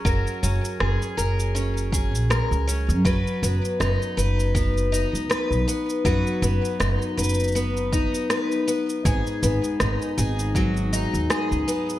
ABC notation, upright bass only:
X:1
M:4/4
L:1/16
Q:"Swing 16ths" 1/4=80
K:Cblyd
V:1 name="Upright bass" clef=bass
G,,, z G,,, z G,,, z G,,,4- G,,, B,,, z D,,2 G,, | ^F,,, z F,,, z F,,, z F,,,4- F,,, D,, z =B,,, z2 | ^F,,, z F,,, z F,,, z F,,,4- F,,, z4 z | A,,, z A,,, z A,,, z A,,,4- A,,, E,, z D,, z2 |]